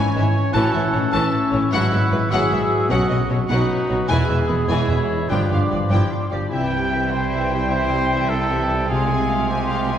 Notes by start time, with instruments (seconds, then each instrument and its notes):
Already playing: harp G#2 C#4 E4 B4 C#5, viola section E3, trombone section E3 C#4, violin section C#4 G#5, clarinet E4, trumpet C#5, oboe G#5, flute section C#6
0.14 double bass section G#1, cello section G#2, viola section E3, violin section G#3 E5, french horn section C#4
0.35 french horn section E4, harp E4
0.53 double bass section A1, harp A2, cello section A2, viola section E3, trombone section E3 C#4, violin section C#4 A5, clarinet E4, french horn section F#4, trumpet A4, oboe F#5, flute section C#6
0.73 double bass section A1, cello section A2, viola section E3, violin section A3 E5, french horn section E4
0.93 double bass section A1, cello section A2, viola section E3, violin section A3 C#5, french horn section D#4, harp E5
1.11 double bass section A1, cello section A2, viola section E3, trombone section E3 C#4, violin section C#4 A5, french horn section C#4, clarinet E4, trumpet A4, harp C#5, oboe E5, flute section C#6
1.34 harp E5
1.51 double bass section A1, cello section A2, viola section E3, violin section A3 C#5, trumpet C#4, harp E4, oboe A4
1.71 double bass section G#1, cello section G#2, harp G#2, trombone section F#3 E4, viola section F#3, trumpet E4, violin section E4 F#5, french horn section E4, clarinet F#4, oboe B4, flute section E6
1.91 double bass section G#1, cello section G#2, viola section F#3, harp B3, violin section B3 E5
2.11 double bass section G#1, cello section G#2, viola section F#3, violin section G#3 B4, harp E5
2.30 double bass section G#1, cello section G#2, trombone section F#3 E4, viola section F#3, violin section E4 F#5, clarinet F#4, french horn section G#4, trumpet G#4, harp B4, oboe E5, flute section E6
2.50 double bass section G#1, cello section G#2, viola section F#3, violin section B3 E5, harp E5
2.72 harp F#4
2.89 double bass section B1, cello section B2, harp B2, trombone section F#3 C#4, viola section F#3, violin section C#4 F#5, trumpet F#4, clarinet F#4, french horn section F#4, oboe D#5, flute section C#6
3.09 double bass section B1, cello section B2, viola section F#3, violin section B3 D#5, harp B3
3.29 double bass section B1, cello section B2, viola section F#3, violin section B3 C#5, harp C#5
3.48 double bass section B1, cello section B2, trombone section F#3 C#4, viola section F#3, violin section C#4 F#5, french horn section D#4, trumpet D#4, clarinet F#4, oboe B4, harp B4, flute section C#6
3.70 french horn section E4, harp C#5
3.88 double bass section B1, cello section B2, viola section F#3, violin section B3 C#5, harp F#4, french horn section F#4
4.08 double bass section E1, harp E2, cello section E2, trombone section E3 G#3, viola section E3, trumpet E4, violin section E4 G#5, french horn section G#4, clarinet G#4, oboe B4, flute section B5
4.29 double bass section E1, cello section E2, viola section E3, harp G#3, violin section B3 E5
4.47 double bass section E1, cello section E2, viola section E3, violin section G#3 B4, trumpet B3, oboe G#4, harp E5
4.68 double bass section E1, cello section E2, viola section E3, trumpet E4, french horn section G#4, harp G#4, oboe C#5, violin section G#5
4.72 violin section E4
4.88 double bass section E1, cello section E2, viola section E3, french horn section F#4, violin section E5, flute section B5
4.92 violin section B3
5.10 harp E4, french horn section E4
5.29 double bass section G1, cello section G2, harp G2, trombone section F3 G3, viola section F3, violin section D4 G5, trumpet D4, french horn section D4, clarinet F4, oboe B4, flute section D6
5.49 double bass section G1, cello section G2, viola section F3, harp G3, violin section B3 F5
5.69 cello section G2, viola section F3, violin section G3 D5, harp D5
5.73 double bass section G1
5.89 cello section G2, viola section F3, violin section D4 G5, clarinet E4, harp G4
5.93 double bass section G1
6.11 clarinet F4, harp D5
6.30 double bass section G1, cello section G2, viola section F3, violin section G3 D5, harp F4, clarinet G4
6.49 cello section C3, harp C3, trombone section G3, french horn section C4 E4, clarinet E4, violin section E4 E5, flute section G5, trumpet G5
6.53 double bass section C2, trombone section C3, viola section E3, oboe G5
6.72 harp G3, viola section G3, violin section G4 G5
6.91 viola section E3, violin section E4 E5, harp C5
7.10 viola section G3, violin section G4 G5, trumpet C5, harp E5
7.29 violin section E4 E5, harp G4
7.34 viola section E3
7.50 viola section G3, violin section G4 G5, harp C5
7.70 viola section E3, harp C4, violin section E4 E5, trumpet C5
7.90 harp G3, viola section G3, violin section G4 G5
8.10 viola section E3, violin section E4 E5, harp C5
8.29 viola section G3, violin section G4 G5, trumpet A4, harp E5
8.50 viola section E3, violin section E4 E5, harp G4
8.70 viola section G3, violin section G4 G5, harp C5
8.88 harp C3, trombone section G#3, viola section G#3, violin section F4 F5, french horn section F4, clarinet F4, trumpet G#4, oboe G#5, flute section C6
9.07 harp G#3, violin section G#4 G#5
9.11 viola section C4
9.28 viola section G#3, violin section F4 F5, harp C5
9.49 viola section C4, trumpet G4, violin section G#4 G#5, harp F5
9.67 viola section G#3, violin section F4 F5, harp G#4
9.87 viola section C4, violin section G#4 G#5, harp C5